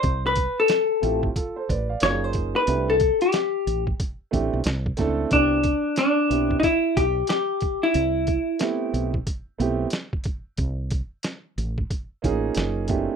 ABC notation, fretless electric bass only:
X:1
M:4/4
L:1/16
Q:"Swing 16ths" 1/4=91
K:Am
V:1 name="Fretless electric bass" clef=bass
C,,3 z3 A,,,2 z2 A,,,2 ^F,,,4 | C,,3 z3 A,,,2 z2 A,,, B,,, C,,2 _D,,2 | C,,3 z3 B,,,2 z2 B,,,2 z4 | C,,3 z3 B,,,2 z2 B,,,2 z4 |
C,,3 z3 A,,,2 z2 A,,,2 ^F,,,4 |]